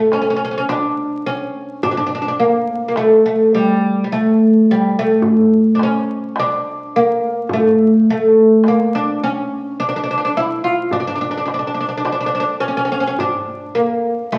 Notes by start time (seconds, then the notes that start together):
0.12 C#4, darbuka tek
0.21 C#4
0.30 C#4
0.36 C#4
0.45 C#4
0.51 C#4
0.58 C#4
0.69 D4, darbuka tek
1.26 C#4
1.83 D4, darbuka dum
1.91 D4
1.97 D4
2.07 D4
2.15 D4
2.22 D4
2.28 D4
2.40 A#3, darbuka ka
2.88 A#3
2.96 A3, darbuka tek
3.26 A3
3.53 G3, darbuka ka
4.04 G3
4.12 A3
4.66 darbuka ka
4.71 G3
4.99 A3
5.22 darbuka dum
5.75 D4
5.79 C#4, darbuka tek
6.36 D4, darbuka tek
6.96 A#3
7.49 darbuka dum
7.53 A3
8.06 darbuka ka
8.10 A3
8.64 darbuka tek
8.68 A#3
8.95 D4
9.21 C#4, darbuka ka
9.80 D4
9.89 D4
9.96 D4
10.04 D4
10.11 D4
10.18 D4
10.25 D4
10.35 E4, darbuka ka
10.64 F4
10.91 D4, darbuka dum
11.00 D4
11.07 D4
11.15 D4
11.21 D4
11.31 D4
11.38 D4
11.46 D4, darbuka tek
11.54 D4
11.59 D4
11.67 D4
11.74 D4
11.81 D4
11.89 D4
11.97 D4
12.05 D4, darbuka tek
12.12 D4
12.21 D4
12.26 D4
12.35 D4
12.40 D4
12.60 C#4
12.68 C#4
12.77 C#4
12.85 C#4
12.92 C#4
13.00 C#4
13.07 C#4
13.19 D4, darbuka dum
13.75 A#3
14.32 A3, darbuka tek